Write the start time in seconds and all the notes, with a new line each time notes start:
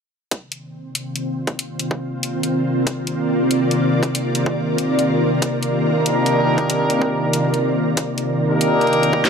0.31 C3 D#3 A#3 C4 D5, kick, closed hi-hat
0.52 closed hi-hat
0.94 F4, closed hi-hat
1.16 closed hi-hat
1.47 kick, closed hi-hat
1.59 closed hi-hat
1.79 closed hi-hat
1.91 kick
1.96 A#4
2.23 closed hi-hat
2.43 closed hi-hat
2.54 D5
2.87 kick, closed hi-hat
3.07 closed hi-hat
3.51 closed hi-hat
3.71 closed hi-hat
4.03 kick, closed hi-hat
4.15 closed hi-hat
4.35 closed hi-hat
4.46 kick
4.78 closed hi-hat
4.99 closed hi-hat
5.42 kick, closed hi-hat
5.63 closed hi-hat
5.94 A#3 D4 D#4 G4 A#4
6.06 closed hi-hat
6.26 closed hi-hat
6.58 kick, closed hi-hat
6.70 closed hi-hat
6.90 closed hi-hat
7.02 kick
7.33 closed hi-hat
7.54 closed hi-hat
7.97 kick, closed hi-hat
8.18 closed hi-hat
8.50 A#3 D4 D#4 G4 A#4
8.61 closed hi-hat
8.81 closed hi-hat
8.87 closed hi-hat
8.93 closed hi-hat
9.03 closed hi-hat
9.13 kick
9.25 snare, closed hi-hat